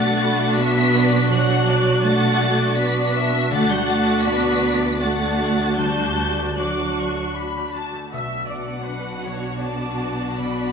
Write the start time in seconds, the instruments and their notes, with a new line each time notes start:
Already playing: double bass section B1, timpani B2, harp B2 D4 F#4 D5, cello section A3, viola section D4 F#4, violin section F#5 A6
0.23 harp B5
0.40 harp D5
0.57 cello section B3, harp F#4, violin section E5 B6
0.95 harp D4, violin section D5
1.30 harp B2, cello section F#3, violin section F#5 F#6
1.50 harp D4
1.68 harp F#4, violin section D5
1.87 harp D5
2.03 cello section A3, harp F#4, violin section F#5 A6
2.59 harp D5
2.76 cello section B3, harp F#4, violin section D5 B6
3.14 harp D4, violin section E5
3.51 double bass section D2, harp D3, cello section A3, viola section D4 F#4, violin section F#5 A6
3.70 cello section G3, harp D4, violin section G6
3.87 cello section A3, harp F#4, violin section A6
4.07 harp D5
4.23 cello section B3, harp F#4, violin section D5 B6
4.44 harp A5
4.81 harp D5
5.00 cello section A3, viola section D4 F#4, harp F#4, violin section F#5 A6
5.20 harp A3
5.40 harp D4
5.59 harp A3
5.76 harp D3, cello section G3, violin section A5 G6
5.99 harp D4
6.18 harp F#4
6.38 harp D5
6.56 cello section F#3, viola section D4 F#4, harp F#4, violin section D6 F#6
6.78 harp F#5
6.97 violin section C#6
7.17 harp D5
7.36 harp F#4, violin section B5
7.56 harp A3
7.74 harp D4, violin section A5
7.93 harp A3
8.11 double bass section B1, harp B2, cello section B2, violin section D4 F#4, viola section E5
8.50 harp D5, viola section D5, violin section F#5
8.88 harp D4, viola section B4
9.25 harp F#3, viola section C#5
9.62 harp D4, viola section D5, violin section A5
10.00 harp F#4
10.37 harp B2, viola section D5, violin section B5